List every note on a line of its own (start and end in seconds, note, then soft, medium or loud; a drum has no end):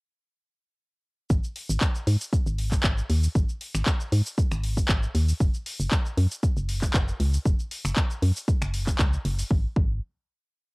1.30 1.40 G#1 loud
1.30 kick loud
1.30 shaker medium
1.44 shaker soft
1.56 open hi-hat loud
1.70 1.78 G#1 medium
1.70 shaker medium
1.81 kick loud
1.81 clap loud
1.81 shaker medium
1.95 shaker soft
2.07 2.17 G#2 loud
2.07 open hi-hat loud
2.21 shaker medium
2.33 kick loud
2.33 shaker medium
2.46 2.78 G#1 medium
2.46 shaker soft
2.58 open hi-hat loud
2.72 kick medium
2.72 clap soft
2.72 shaker medium
2.83 3.02 G#1 loud
2.83 kick loud
2.83 clap loud
2.83 shaker medium
2.98 shaker soft
3.10 3.28 D#2 loud
3.10 open hi-hat loud
3.23 shaker medium
3.35 3.45 G#1 loud
3.35 kick loud
3.35 shaker medium
3.49 shaker soft
3.61 open hi-hat loud
3.75 3.83 G#1 medium
3.75 finger snap medium
3.75 shaker medium
3.86 kick loud
3.86 clap loud
3.86 shaker medium
4.00 shaker soft
4.12 4.22 G#2 loud
4.12 open hi-hat loud
4.26 shaker medium
4.38 kick loud
4.38 shaker medium
4.52 4.83 G#1 medium
4.52 finger snap medium
4.52 shaker soft
4.64 open hi-hat loud
4.77 kick medium
4.77 shaker medium
4.89 5.07 G#1 loud
4.89 kick loud
4.89 clap loud
4.89 shaker medium
5.03 shaker soft
5.15 5.33 D#2 loud
5.15 open hi-hat loud
5.29 open hi-hat medium
5.29 shaker medium
5.40 5.50 F#1 loud
5.40 kick loud
5.40 shaker medium
5.54 shaker soft
5.66 open hi-hat loud
5.80 5.88 F#1 medium
5.80 shaker medium
5.91 kick loud
5.91 clap loud
5.91 shaker medium
6.06 shaker soft
6.17 6.27 F#2 loud
6.17 open hi-hat loud
6.31 shaker medium
6.43 kick loud
6.43 shaker medium
6.57 6.88 F#1 medium
6.57 shaker soft
6.69 open hi-hat loud
6.82 kick medium
6.82 clap soft
6.82 shaker medium
6.94 7.12 F#1 loud
6.94 kick loud
6.94 clap loud
6.94 shaker medium
7.08 shaker soft
7.20 7.38 C#2 loud
7.20 open hi-hat loud
7.34 shaker medium
7.46 7.55 F#1 loud
7.46 kick loud
7.46 shaker medium
7.59 shaker soft
7.71 open hi-hat loud
7.85 7.93 F#1 medium
7.85 finger snap medium
7.85 shaker medium
7.96 kick loud
7.96 clap loud
7.96 shaker medium
8.11 shaker soft
8.22 8.32 F#2 loud
8.22 open hi-hat loud
8.36 shaker medium
8.48 kick loud
8.48 shaker medium
8.62 8.93 F#1 medium
8.62 finger snap medium
8.62 shaker soft
8.74 open hi-hat loud
8.87 kick medium
8.87 clap soft
8.87 shaker medium
8.99 9.18 C#2 medium
8.99 kick loud
8.99 clap loud
8.99 shaker medium
9.13 shaker soft
9.25 9.43 F#1 loud
9.25 open hi-hat loud
9.39 open hi-hat medium
9.39 shaker medium
9.51 9.66 G#1 loud
9.51 kick loud
9.76 10.00 G#1 loud
9.76 kick loud